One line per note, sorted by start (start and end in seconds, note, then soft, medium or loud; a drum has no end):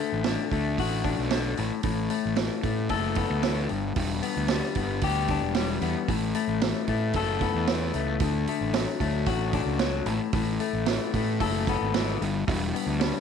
0.00 0.24 D3 medium
0.00 0.51 A3 medium
0.12 0.36 A1 medium
0.24 1.30 D3 medium
0.24 snare loud
0.24 open hi-hat medium
0.52 0.75 D2 medium
0.52 1.58 A3 medium
0.52 kick medium
0.52 open hi-hat medium
0.78 1.14 A1 medium
0.78 1.58 F#4 medium
0.78 kick medium
0.78 open hi-hat medium
1.04 1.58 D4 medium
1.04 kick medium
1.04 open hi-hat medium
1.19 1.54 B1 medium
1.30 1.57 D3 medium
1.30 snare loud
1.30 open hi-hat medium
1.57 1.70 A1 loud
1.57 1.83 A2 medium
1.57 open hi-hat soft
1.83 2.07 A1 medium
1.83 3.17 A2 medium
1.83 kick loud
1.83 open hi-hat medium
2.10 2.63 A3 medium
2.10 open hi-hat medium
2.25 2.48 A1 medium
2.36 3.42 E3 medium
2.36 snare loud
2.36 open hi-hat medium
2.63 2.87 A2 medium
2.63 3.70 A3 medium
2.63 kick medium
2.63 open hi-hat medium
2.89 3.25 F#1 medium
2.89 3.70 A4 medium
2.89 kick medium
2.89 open hi-hat medium
3.15 4.23 B3 medium
3.15 kick medium
3.15 open hi-hat medium
3.30 3.66 D2 medium
3.43 3.70 E3 medium
3.43 snare loud
3.43 open hi-hat medium
3.69 3.94 G1 medium
3.69 3.96 G2 medium
3.69 open hi-hat soft
3.96 4.20 E1 medium
3.96 5.29 G2 medium
3.96 kick loud
3.96 open hi-hat medium
4.23 4.75 B3 medium
4.23 open hi-hat medium
4.36 4.60 D2 medium
4.48 5.55 G3 medium
4.48 snare loud
4.48 open hi-hat medium
4.63 snare soft
4.75 4.99 G1 medium
4.75 5.81 B3 medium
4.75 kick medium
4.75 open hi-hat medium
5.01 5.38 D2 medium
5.01 6.10 G4 medium
5.01 kick medium
5.01 open hi-hat medium
5.28 6.10 D4 medium
5.28 kick medium
5.28 open hi-hat medium
5.42 5.78 E1 medium
5.55 6.09 G3 medium
5.55 snare loud
5.55 open hi-hat medium
5.81 5.94 E2 loud
5.81 6.09 B3 medium
5.81 open hi-hat medium
6.08 6.32 A1 medium
6.08 7.42 A2 medium
6.08 kick loud
6.08 open hi-hat medium
6.35 6.89 A3 medium
6.35 open hi-hat medium
6.47 6.72 A1 medium
6.61 7.67 E3 medium
6.61 snare loud
6.61 open hi-hat medium
6.87 7.12 A2 medium
6.87 7.95 A3 medium
6.87 kick medium
6.87 open hi-hat soft
7.13 7.50 F#1 medium
7.13 9.26 A4 medium
7.13 kick medium
7.13 open hi-hat medium
7.41 8.22 B3 medium
7.41 kick medium
7.41 open hi-hat medium
7.54 7.90 E2 medium
7.67 8.21 E3 medium
7.67 snare loud
7.67 open hi-hat medium
7.94 8.18 C#2 medium
7.94 8.48 A3 medium
7.94 open hi-hat soft
8.20 8.45 D2 medium
8.20 9.55 D3 medium
8.20 kick loud
8.20 open hi-hat medium
8.47 9.00 A3 medium
8.47 open hi-hat medium
8.61 8.85 A1 medium
8.74 9.80 F#3 medium
8.74 snare loud
8.74 open hi-hat medium
9.00 9.24 D2 medium
9.00 10.08 A3 medium
9.00 kick medium
9.00 open hi-hat medium
9.26 9.63 A1 medium
9.26 10.07 F#4 medium
9.26 kick medium
9.26 open hi-hat medium
9.53 10.07 D4 medium
9.53 kick medium
9.53 open hi-hat medium
9.65 10.02 C#2 medium
9.79 10.08 F#3 medium
9.79 snare loud
9.79 open hi-hat medium
10.06 10.18 A1 loud
10.06 10.33 A2 medium
10.06 open hi-hat soft
10.33 10.57 A1 medium
10.33 11.67 A2 medium
10.33 kick loud
10.33 open hi-hat medium
10.60 11.14 A3 medium
10.60 open hi-hat medium
10.73 10.97 A1 medium
10.86 11.94 E3 medium
10.86 snare loud
10.86 open hi-hat medium
11.14 11.38 A2 medium
11.14 12.21 A3 medium
11.14 kick medium
11.14 open hi-hat medium
11.40 11.76 F#1 medium
11.40 12.21 A4 medium
11.40 kick medium
11.40 open hi-hat medium
11.67 12.22 B3 medium
11.67 kick medium
11.67 open hi-hat medium
11.81 12.16 G#1 medium
11.94 12.21 E3 medium
11.94 snare loud
11.94 open hi-hat medium
12.21 12.45 G1 medium
12.21 12.46 G2 medium
12.21 open hi-hat medium
12.47 12.71 E1 loud
12.47 13.20 G2 medium
12.47 kick loud
12.47 open hi-hat medium
12.74 13.20 B3 medium
12.74 open hi-hat medium
12.86 13.11 D2 medium
13.00 13.20 G3 medium
13.00 snare loud
13.00 open hi-hat medium